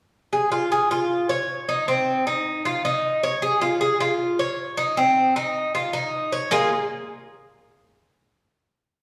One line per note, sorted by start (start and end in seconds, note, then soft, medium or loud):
0.33 0.51 G#4 medium
0.52 0.70 F4 medium
0.72 0.90 G#4 medium
0.91 1.28 F4 medium
1.29 1.67 C#5 medium
1.69 1.87 D#4 medium
1.88 2.25 C4 medium
2.27 2.64 D#4 medium
2.65 2.84 F4 medium
2.85 3.22 D#4 medium
3.23 3.42 C#5 medium
3.42 3.61 G#4 medium
3.61 3.80 F4 medium
3.81 4.00 G#4 medium
4.00 4.38 F4 medium
4.39 4.77 C#5 medium
4.77 4.96 D#4 medium
4.97 5.35 C4 medium
5.36 5.73 D#4 medium
5.75 5.93 F4 medium
5.93 6.31 D#4 medium
6.32 6.51 C#5 medium
6.51 6.69 A#3 medium
6.51 6.70 F4 medium
6.51 6.70 G#4 medium